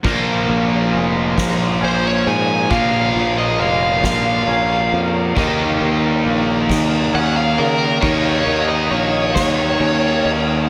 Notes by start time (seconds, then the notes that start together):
0.03 A#1 A#2 F3 A#3, kick, crash
0.48 A#1 F3, ride
0.93 F1 G#3, ride
1.37 A#1 F3, kick, snare, ride
1.81 A#1 C#4 C5, ride
2.07 C#5
2.25 G#2 F3 G#5, ride
2.69 A#1 A#2 F3 A#3 F5, kick, ride
3.14 A#1 F3, ride
3.38 D#5
3.58 F1 G#3 F5, ride
4.03 A#1 F3 F5, kick, snare, ride
4.47 A#1 C#4, ride
4.92 F2 F3, ride
5.35 D#2 D#3 A#3 D#4, kick, crash
5.80 D#2 D#3, ride
6.25 A#1 A#3, ride
6.69 D#2 D#3, kick, snare, ride
7.13 D#2 C#4 F#5, ride
7.36 F5
7.58 C#3 D#3 A#4, ride
8.01 D#2 D#3 A#3 D#4 C#5, kick, ride
8.46 D#2 D#3, ride
8.69 D#5
8.91 A#1 A#3 C#5, ride
9.35 D#2 D#3 C#5, kick, snare, ride
9.80 D#2 C#4, ride
10.23 D#2 D#3, ride